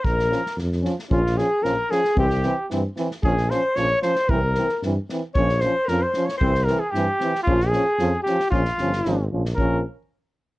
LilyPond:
<<
  \new Staff \with { instrumentName = "Alto saxophone" } { \time 2/4 \tempo 4 = 113 bes'4 r4 | f'8 aes'8 bes'8 aes'8 | g'4 r4 | aes'8 c''8 des''8 c''8 |
bes'4 r4 | des''8 c''8 bes'16 c''8 des''16 | c''8 bes'16 aes'16 g'4 | f'8 aes'4 g'8 |
f'4. r8 | bes'8 r4. | }
  \new Staff \with { instrumentName = "Trumpet" } { \time 2/4 bes'4 r4 | f'8 aes'8 bes'8 aes'8 | g'4 r4 | aes'8 c''8 des''8 c''8 |
bes'4 r4 | des''8 c''8 bes'16 c''8 des''16 | c''8 bes'16 aes'16 g'4 | f'8 aes'4 g'8 |
f'4. r8 | bes'8 r4. | }
  \new Staff \with { instrumentName = "Trombone" } { \time 2/4 r8 des'8 r8 des'8 | des'8 des'8 des'8 des'8 | c'8 c'8 c'8 c'8 | des'8 des'8 des'8 des'8 |
c'8 c'8 c'8 c'8 | des'8 des'8 des'8 des'8 | c'8 c'8 c'8 c'8 | des'8 des'8 des'8 des'8 |
des'8 des'8 des'8 des'8 | des'8 r4. | }
  \new Staff \with { instrumentName = "Euphonium" } { \clef bass \time 2/4 r8 f8 r8 f8 | f8 f8 f8 f8 | e8 e8 e8 e8 | f8 f8 f8 f8 |
e8 e8 e8 e8 | f8 f8 f8 f8 | e8 e8 e8 e8 | f8 f8 f8 f8 |
f8 f8 f8 f8 | f8 r4. | }
  \new Staff \with { instrumentName = "Tuba" } { \clef bass \time 2/4 bes,,4 f,4 | bes,,4 bes,,8 r8 | c,4 g,8 r8 | bes,,4 bes,,8 r8 |
c,4 g,8 r8 | bes,,4 f,8 r8 | c,4 g,8 r8 | bes,,4 f,8 r8 |
bes,,8 g,,8 aes,,8 bes,,8 | bes,,8 r4. | }
  \new DrumStaff \with { instrumentName = "Drums" } \drummode { \time 2/4 bd16 sn16 sn16 sn16 sn16 sn16 sn16 sn16 | bd16 sn16 sn8 sn8 sn16 sn16 | bd16 sn16 sn8 sn8 sn16 sn16 | bd16 sn16 sn8 sn8 sn16 sn16 |
bd8 sn16 sn16 sn8 sn8 | bd16 sn16 sn8 sn8 sn16 sn16 | bd16 sn16 sn8 sn8 sn16 sn16 | bd16 sn16 sn8 sn8 sn16 sn16 |
bd16 sn16 sn16 sn16 sn8. sn16 | bd4 r4 | }
>>